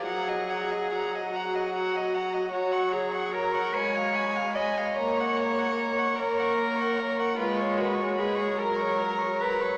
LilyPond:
<<
  \new Staff \with { instrumentName = "Violin" } { \time 6/8 \key ges \major \tempo 4. = 50 bes''16 ges''16 bes''16 ges''16 bes''16 ges''16 bes''16 ges''16 bes''16 ges''16 bes''16 ges''16 | bes''16 des'''16 bes''16 des'''16 bes''16 des'''16 ces'''16 aes''16 ces'''16 aes''16 ces'''16 aes''16 | bes''16 des'''16 bes''16 des'''16 bes''16 des'''16 bes''16 des'''16 bes''16 des'''16 bes''16 des'''16 | \key fis \major b''16 cis'''16 b''16 cis'''16 b''16 cis'''16 ais''16 cis'''16 ais''16 cis'''16 ais''16 cis'''16 | }
  \new Staff \with { instrumentName = "Violin" } { \time 6/8 \key ges \major ges''16 ees''16 ges''16 ees''16 ges''16 ees''16 ges''16 ees''16 ges''16 ees''16 ges''16 ees''16 | des''16 ges''16 des''16 ges''16 des''16 ges''16 aes''16 f''16 aes''16 f''16 aes''16 f''16 | des''16 ges''16 des''16 ges''16 des''16 ges''16 des''16 ges''16 des''16 ges''16 des''16 ges''16 | \key fis \major b'16 cis''16 b'16 cis''16 b'16 cis''16 ais'16 cis''16 ais'16 cis''16 ais'16 cis''16 | }
  \new Staff \with { instrumentName = "Cello" } { \time 6/8 \key ges \major aes'4. ges'4. | ges'8 aes'8 bes'8 des''4 ees''8 | des''4. bes'4. | \key fis \major eis'8 fis'8 gis'8 ais'4 b'8 | }
  \new Staff \with { instrumentName = "Viola" } { \clef bass \time 6/8 \key ges \major ges4. ges4. | ges4. aes4. | bes4. bes4. | \key fis \major gis4. fis4. | }
>>